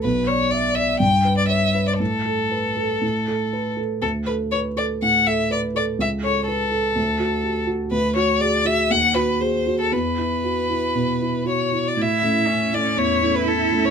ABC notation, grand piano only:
X:1
M:4/4
L:1/8
Q:1/4=121
K:D
V:1 name="Grand piano"
B,,, d e d G,, B c B | A,, A B A A,, A B A | D,, A B A A,, A B A | C,, A B A D,, F G F |
[K:A] D,, F G F ^D,, F G F | E,, E F E B,, E F E | A,, [A,CE]2 [A,CE] E,, [A,CE]2 [A,CE] |]